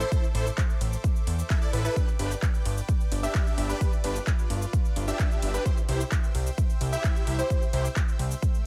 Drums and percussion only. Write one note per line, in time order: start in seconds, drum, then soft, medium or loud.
0.01 shaker medium
0.12 kick loud
0.12 shaker medium
0.24 shaker soft
0.35 open hi-hat loud
0.35 ride medium
0.47 shaker medium
0.58 kick loud
0.58 clap loud
0.58 shaker medium
0.70 shaker soft
0.81 open hi-hat loud
0.81 ride medium
0.93 shaker medium
1.04 kick loud
1.04 shaker medium
1.16 shaker soft
1.27 open hi-hat loud
1.27 ride medium
1.39 shaker medium
1.50 kick loud
1.50 clap loud
1.50 shaker medium
1.62 shaker soft
1.73 open hi-hat loud
1.73 ride medium
1.85 shaker medium
1.96 kick loud
1.96 shaker medium
2.08 shaker soft
2.19 open hi-hat loud
2.19 ride medium
2.31 shaker medium
2.42 kick loud
2.42 clap loud
2.42 shaker medium
2.54 shaker soft
2.65 open hi-hat loud
2.65 ride medium
2.77 shaker medium
2.89 kick loud
2.89 shaker medium
3.01 shaker soft
3.12 open hi-hat loud
3.12 ride medium
3.24 shaker medium
3.35 kick loud
3.35 clap loud
3.35 shaker medium
3.47 shaker soft
3.58 open hi-hat loud
3.58 ride medium
3.70 shaker medium
3.81 kick loud
3.81 shaker medium
3.93 shaker soft
4.04 open hi-hat loud
4.04 ride medium
4.16 shaker medium
4.27 kick loud
4.27 clap loud
4.27 shaker medium
4.39 shaker soft
4.50 open hi-hat loud
4.50 ride medium
4.62 shaker medium
4.73 kick loud
4.73 shaker medium
4.85 shaker soft
4.96 open hi-hat loud
4.96 ride medium
5.08 shaker medium
5.19 kick loud
5.19 clap loud
5.19 shaker medium
5.31 shaker soft
5.42 open hi-hat loud
5.42 ride medium
5.54 shaker medium
5.66 kick loud
5.66 shaker medium
5.77 shaker soft
5.89 open hi-hat loud
5.89 ride medium
6.01 shaker medium
6.12 kick loud
6.12 clap loud
6.12 shaker medium
6.24 shaker soft
6.35 open hi-hat loud
6.35 ride medium
6.47 shaker medium
6.58 kick loud
6.58 shaker medium
6.70 shaker soft
6.81 open hi-hat loud
6.81 ride medium
6.93 shaker medium
7.04 kick loud
7.04 clap loud
7.04 shaker medium
7.16 shaker soft
7.27 open hi-hat loud
7.27 ride medium
7.39 shaker medium
7.50 kick loud
7.50 shaker medium
7.62 shaker soft
7.73 open hi-hat loud
7.73 ride medium
7.85 shaker medium
7.96 kick loud
7.96 clap loud
7.96 shaker medium
8.08 shaker soft
8.19 open hi-hat loud
8.19 ride medium
8.31 shaker medium
8.42 kick loud
8.42 shaker medium
8.54 shaker soft